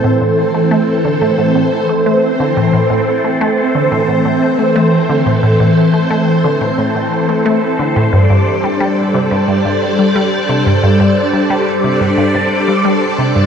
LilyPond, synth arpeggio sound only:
\new Staff \with { instrumentName = "Synth arpeggio sound" } { \clef bass \time 4/4 \key a \minor \tempo 4 = 89 a,16 a,16 r16 a16 a16 r16 d16 a,16 a,16 a,16 r16 a16 a16 r16 d16 a,16 | a,16 a,16 r16 a16 a16 r16 d16 a,16 a,16 a,16 r16 a16 a16 r16 d16 a,16 | a,16 a,16 r16 a16 a16 r16 d16 a,16 a,16 a,16 r16 a16 a16 r16 d16 a,16 | g,16 g,16 r16 g16 g16 r16 c16 g,16 g,16 g,16 r16 g16 g16 r16 c16 g,16 |
g,16 g,16 r16 g16 g16 r16 c16 g,16 g,16 g,16 r16 g16 g16 r16 c16 g,16 | }